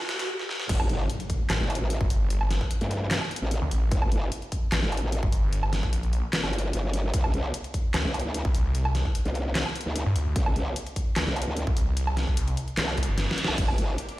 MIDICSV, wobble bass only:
0, 0, Header, 1, 2, 480
1, 0, Start_track
1, 0, Tempo, 402685
1, 827, Time_signature, 4, 2, 24, 8
1, 16919, End_track
2, 0, Start_track
2, 0, Title_t, "Wobble bass"
2, 0, Program_c, 0, 39
2, 827, Note_on_c, 0, 31, 106
2, 1049, Note_off_c, 0, 31, 0
2, 1067, Note_on_c, 0, 31, 99
2, 1289, Note_off_c, 0, 31, 0
2, 1911, Note_on_c, 0, 31, 95
2, 2132, Note_off_c, 0, 31, 0
2, 2151, Note_on_c, 0, 33, 102
2, 2371, Note_off_c, 0, 33, 0
2, 3352, Note_on_c, 0, 43, 101
2, 3812, Note_off_c, 0, 43, 0
2, 4072, Note_on_c, 0, 33, 101
2, 4292, Note_off_c, 0, 33, 0
2, 4667, Note_on_c, 0, 31, 104
2, 4889, Note_off_c, 0, 31, 0
2, 4909, Note_on_c, 0, 31, 97
2, 5129, Note_off_c, 0, 31, 0
2, 5752, Note_on_c, 0, 31, 98
2, 5972, Note_off_c, 0, 31, 0
2, 5992, Note_on_c, 0, 33, 101
2, 6212, Note_off_c, 0, 33, 0
2, 7671, Note_on_c, 0, 31, 98
2, 8009, Note_off_c, 0, 31, 0
2, 8028, Note_on_c, 0, 31, 97
2, 8489, Note_off_c, 0, 31, 0
2, 8507, Note_on_c, 0, 36, 106
2, 8729, Note_off_c, 0, 36, 0
2, 8747, Note_on_c, 0, 36, 102
2, 8968, Note_off_c, 0, 36, 0
2, 9592, Note_on_c, 0, 36, 100
2, 9812, Note_off_c, 0, 36, 0
2, 9831, Note_on_c, 0, 38, 102
2, 10051, Note_off_c, 0, 38, 0
2, 11030, Note_on_c, 0, 36, 101
2, 11491, Note_off_c, 0, 36, 0
2, 11750, Note_on_c, 0, 38, 97
2, 11971, Note_off_c, 0, 38, 0
2, 12347, Note_on_c, 0, 36, 102
2, 12568, Note_off_c, 0, 36, 0
2, 12587, Note_on_c, 0, 36, 104
2, 12808, Note_off_c, 0, 36, 0
2, 13431, Note_on_c, 0, 36, 99
2, 13651, Note_off_c, 0, 36, 0
2, 13672, Note_on_c, 0, 38, 99
2, 13892, Note_off_c, 0, 38, 0
2, 15227, Note_on_c, 0, 36, 97
2, 15449, Note_off_c, 0, 36, 0
2, 16072, Note_on_c, 0, 36, 100
2, 16169, Note_off_c, 0, 36, 0
2, 16187, Note_on_c, 0, 31, 101
2, 16408, Note_off_c, 0, 31, 0
2, 16427, Note_on_c, 0, 31, 100
2, 16649, Note_off_c, 0, 31, 0
2, 16919, End_track
0, 0, End_of_file